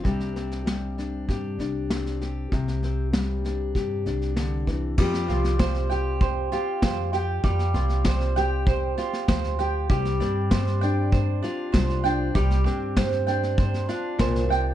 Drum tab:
CC |----------------|----------------|x---------------|----------------|
SD |ooooo-o-o-o-ooo-|ooo-o-o-o-ooo-o-|ooooooo-o-o-o-o-|ooooooo-o-ooooo-|
BD |o-------o-------|o-------o-----o-|o---o---o---o---|o---o---o---o---|

CC |----------------|----------------|
SD |ooo-ooo-o-o-ooo-|ooo-ooooooo-ooo-|
BD |o---o---o---o---|o---o---o---o---|